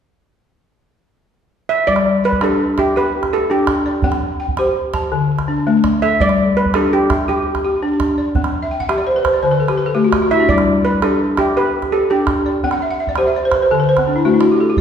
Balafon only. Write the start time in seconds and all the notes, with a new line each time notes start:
1.88 G3 D5
2.24 D5
2.42 D4 G4
2.78 E5
2.96 G4
3.33 G4
3.50 D4
3.86 D5
4.04 C4 G5
4.40 G5
4.59 G4 C5
4.94 A5
5.12 D3
5.48 D4
5.67 A3
6.03 A4
6.20 G3 D5
6.75 D4 G4
7.11 E5
7.28 G4
7.65 G4
7.83 D4
8.18 D5
8.36 C4
8.62 E5
8.71 G5
8.80 F#5
8.89 G4 E5
8.98 D5
9.07 C5
9.16 B4
9.24 C5
9.34 D5
9.43 D3 C5
9.51 B4
9.60 A4
9.69 G4
9.78 B4
9.86 A4
9.95 A3 G4
10.04 F#4
10.13 G4
10.22 F#4
10.31 E4
10.40 D4
10.50 G3 D5
10.86 D5
11.03 D4 G4
11.39 E5
11.57 G4
11.92 G4
12.10 D4
12.46 D5
12.64 C4 G5
12.72 F#5
12.82 E5
12.91 F#5
13.00 E5
13.09 D5
13.18 G4 C5
13.27 E5
13.36 D5
13.45 C5
13.54 B4
13.62 C5
13.71 D3 A4
13.80 B4
13.89 C5
13.98 C4
14.07 D4
14.16 E4
14.25 A3 F#4
14.34 E4
14.43 F#4
14.52 G4
14.60 A4
14.70 G4
14.78 D5